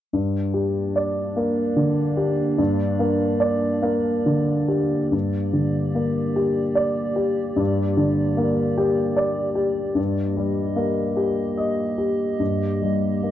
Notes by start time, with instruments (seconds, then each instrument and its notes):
0.13 grand piano G2, ambient pad A#3 D4 D5
0.54 grand piano G4
0.96 grand piano D5
1.36 grand piano A#3
1.76 grand piano D3
2.17 grand piano G4
2.58 grand piano G2
2.99 grand piano A#3
3.40 grand piano D5
3.82 grand piano A#3
4.26 grand piano D3
4.68 grand piano G4
5.12 grand piano G2, ambient pad A#3 G4 D5
5.53 grand piano D3
5.95 grand piano A#3
6.36 grand piano G4
6.75 grand piano D5
7.16 grand piano G4
7.56 grand piano G2
7.97 grand piano D3
8.37 grand piano A#3
8.78 grand piano G4
9.16 grand piano D5
9.55 grand piano G4
9.95 grand piano G2, ambient pad A#3 G4 D#5
10.37 grand piano G3
10.76 grand piano A#3
11.17 grand piano G4
11.57 grand piano D#5
11.98 grand piano G4
12.40 grand piano G2
12.82 grand piano G3
13.23 grand piano A#3